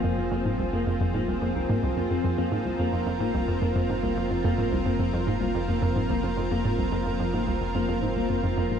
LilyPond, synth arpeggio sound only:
\new Staff \with { instrumentName = "Synth arpeggio sound" } { \clef bass \time 4/4 \key f \phrygian \tempo 4 = 109 f,16 f,16 f,16 aes,16 c,16 f,16 f,16 f,16 aes,16 c,16 f,16 c,16 aes,16 c,16 f,16 f,16 | f,16 f,16 aes,16 c,16 f,16 f,16 f,16 aes,16 c,16 f,16 f,16 f,16 aes,16 c,16 f,16 f,16 | f,16 aes,16 c,16 f,16 f,16 f,16 aes,16 c,16 f,16 f,16 f,16 aes,16 c,16 f,16 f,16 f,16 | aes,16 c,16 f,16 f,16 f,16 aes,16 c,16 f,16 f,16 f,16 aes,16 c,16 f,16 f,16 f,16 aes,16 | }